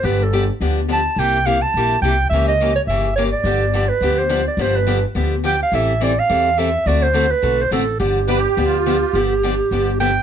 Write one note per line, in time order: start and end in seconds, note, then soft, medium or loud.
0.03 0.49 G1 medium
0.03 0.22 D3 medium
0.03 0.23 F3 medium
0.03 0.22 B3 medium
0.03 0.23 D4 medium
0.03 0.23 G4 medium
0.03 0.25 B4 medium
0.23 0.50 A4 medium
0.33 0.43 D3 medium
0.33 0.43 F3 medium
0.33 0.43 B3 medium
0.33 0.43 D4 medium
0.33 0.43 G4 medium
0.60 1.06 D2 medium
0.60 0.79 D3 medium
0.60 0.80 F3 medium
0.60 0.80 B3 medium
0.60 0.80 D4 medium
0.60 0.80 G4 medium
0.88 0.99 D3 medium
0.88 0.99 F3 medium
0.88 0.99 B3 medium
0.88 0.99 D4 medium
0.88 1.00 G4 medium
0.92 1.21 A5 medium
1.16 1.62 C2 medium
1.16 1.36 C3 medium
1.16 1.37 G3 medium
1.16 1.37 A#3 medium
1.16 1.37 E4 medium
1.16 1.37 G4 medium
1.16 1.48 G5 medium
1.46 1.56 C3 medium
1.46 1.56 G3 medium
1.46 1.57 A#3 medium
1.46 1.57 E4 medium
1.46 1.57 G4 medium
1.46 1.63 F5 medium
1.62 2.01 A5 loud
1.74 1.98 A#1 medium
1.74 1.94 C3 medium
1.74 1.94 G3 medium
1.74 1.94 A#3 medium
1.74 1.94 E4 medium
1.74 1.95 G4 medium
2.02 2.26 C2 medium
2.02 2.13 C3 medium
2.02 2.14 G3 medium
2.02 2.14 A#3 medium
2.02 2.14 E4 medium
2.02 2.14 G4 medium
2.02 2.29 G5 medium
2.29 2.76 C#2 medium
2.29 2.51 C#3 medium
2.29 2.51 E3 medium
2.29 2.45 E5 medium
2.33 2.51 A#3 medium
2.33 2.51 C#4 medium
2.33 2.51 G4 medium
2.48 2.74 D#5 medium
2.60 2.70 C#3 medium
2.60 2.71 E3 medium
2.60 2.71 A#3 medium
2.60 2.71 C#4 medium
2.60 2.71 G4 medium
2.76 2.81 C#5 medium
2.87 3.33 G1 medium
2.87 3.07 C#3 medium
2.87 3.07 E3 medium
2.87 3.08 A#3 medium
2.87 3.08 C#4 medium
2.87 3.08 G4 medium
2.87 3.14 E5 medium
3.16 3.27 C#3 medium
3.16 3.28 E3 medium
3.16 3.28 A#3 medium
3.16 3.28 C#4 medium
3.16 3.28 G4 medium
3.16 3.23 C#5 medium
3.32 3.90 D5 medium
3.44 3.90 G1 medium
3.44 3.64 D3 medium
3.44 3.64 F3 medium
3.44 3.64 B3 medium
3.44 3.64 D4 medium
3.44 3.64 G4 medium
3.74 3.84 D3 medium
3.74 3.84 F3 medium
3.74 3.84 B3 medium
3.74 3.84 D4 medium
3.74 3.84 G4 medium
3.89 4.20 B4 medium
4.01 4.47 D2 medium
4.01 4.21 D3 medium
4.01 4.21 F3 medium
4.01 4.21 B3 medium
4.01 4.21 D4 medium
4.01 4.22 G4 medium
4.18 4.47 C5 medium
4.29 4.40 D3 medium
4.29 4.40 F3 medium
4.29 4.40 B3 medium
4.29 4.40 D4 medium
4.29 4.41 G4 medium
4.48 4.63 D5 medium
4.57 5.03 G1 medium
4.57 4.77 D3 medium
4.57 4.78 F3 medium
4.57 4.78 B3 medium
4.57 4.78 D4 medium
4.57 4.78 G4 medium
4.61 4.78 C5 medium
4.76 5.04 B4 medium
4.87 4.97 D3 medium
4.87 4.97 F3 medium
4.87 4.98 B3 medium
4.87 4.98 D4 medium
4.87 4.97 G4 medium
5.15 5.61 D2 medium
5.15 5.34 D3 medium
5.15 5.34 F3 medium
5.15 5.34 B3 medium
5.15 5.34 D4 medium
5.15 5.35 G4 medium
5.43 5.54 D3 medium
5.43 5.54 F3 medium
5.43 5.55 B3 medium
5.43 5.55 D4 medium
5.43 5.55 G4 medium
5.43 5.60 G5 medium
5.62 5.73 F5 medium
5.72 6.18 A1 medium
5.72 5.91 E3 medium
5.72 5.92 G3 medium
5.72 5.92 C4 medium
5.72 5.92 E4 medium
5.72 5.92 A4 medium
5.72 6.05 E5 loud
6.01 6.11 E3 medium
6.01 6.11 G3 medium
6.01 6.11 C4 medium
6.01 6.12 E4 medium
6.01 6.12 A4 medium
6.01 6.21 D5 medium
6.19 6.60 F5 loud
6.29 6.75 E2 medium
6.29 6.48 E3 medium
6.29 6.48 G3 medium
6.29 6.48 C4 medium
6.29 6.48 E4 medium
6.29 6.49 A4 medium
6.58 6.68 E3 medium
6.58 6.68 G3 medium
6.58 6.69 C4 medium
6.58 6.69 E4 medium
6.58 6.69 A4 medium
6.58 6.88 E5 medium
6.86 7.32 D2 medium
6.86 7.05 D3 medium
6.86 7.05 A3 medium
6.86 7.06 C4 medium
6.86 7.06 F#4 medium
6.86 7.06 A4 medium
6.86 7.04 D5 medium
7.02 7.33 C5 medium
7.14 7.25 D3 medium
7.14 7.25 A3 medium
7.14 7.25 C4 medium
7.14 7.25 F#4 medium
7.14 7.25 A4 medium
7.31 7.64 B4 loud
7.42 7.67 B1 medium
7.42 7.62 D3 medium
7.42 7.61 A3 medium
7.42 7.62 C4 medium
7.42 7.62 F#4 medium
7.42 7.62 A4 medium
7.62 7.72 C5 medium
7.71 7.96 A1 medium
7.71 7.82 D3 medium
7.71 7.82 A3 medium
7.71 7.82 C4 medium
7.71 7.82 F#4 medium
7.71 7.82 A4 medium
7.71 7.99 A4 medium
8.00 8.45 G1 medium
8.00 8.19 D3 medium
8.00 8.19 F3 medium
8.00 8.19 B3 medium
8.00 8.19 D4 medium
8.00 9.95 G4 medium
8.00 8.19 G4 medium
8.28 8.38 D3 medium
8.28 8.39 F3 medium
8.28 8.39 B3 medium
8.28 8.39 D4 medium
8.28 8.39 G4 medium
8.28 8.38 B4 loud
8.37 8.64 G4 medium
8.57 9.02 D2 medium
8.57 8.76 D3 medium
8.57 8.76 F3 medium
8.57 8.76 B3 medium
8.57 8.76 D4 medium
8.57 8.76 G4 medium
8.65 9.19 F4 medium
8.86 8.96 D3 medium
8.86 8.96 F3 medium
8.86 8.96 B3 medium
8.86 8.96 D4 medium
8.86 8.96 G4 medium
9.13 9.59 G1 medium
9.13 9.33 D3 medium
9.13 9.33 F3 medium
9.13 9.33 B3 medium
9.13 9.33 D4 medium
9.13 9.33 G4 medium
9.43 9.53 D3 medium
9.43 9.53 F3 medium
9.43 9.54 B3 medium
9.43 9.54 D4 medium
9.43 9.53 G4 medium
9.71 10.16 G1 medium
9.71 9.90 D3 medium
9.71 9.90 F3 medium
9.71 9.90 B3 medium
9.71 9.90 D4 medium
9.71 9.91 G4 medium
10.00 10.10 D3 medium
10.00 10.10 F3 medium
10.00 10.10 B3 medium
10.00 10.10 D4 medium
10.00 10.10 G4 medium
10.00 10.23 G5 medium